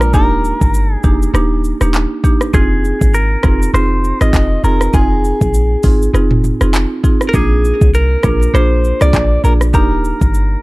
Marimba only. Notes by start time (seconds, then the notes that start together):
0.14 A#3 D4 D#4 G4
1.04 A#3 D4 D#4 G4
1.34 A#3 D4 D#4 G4
1.81 A#3 D4 D#4 G4
2.24 A#3 D4 D#4 G4
2.53 C4 D#4 F4 G#4
3.44 C4 D#4 F4 G#4
3.74 C4 D#4 F4 G#4
4.21 C4 D#4 F4 G#4
4.64 C4 D#4 F4 G#4
4.94 C4 D#4 F4 G#4
5.84 C4 D#4 F4 G#4
6.14 C4 D#4 F4 G#4
6.61 C4 D#4 F4 G#4
7.04 C4 D#4 F4 G#4
7.34 A#3 D4 F4 G#4
8.24 A#3 D4 F4 G#4
8.54 A#3 D4 F4 G#4
9.01 A#3 D4 F4 G#4
9.44 A#3 D4 F4 G#4
9.73 A#3 D4 D#4 G4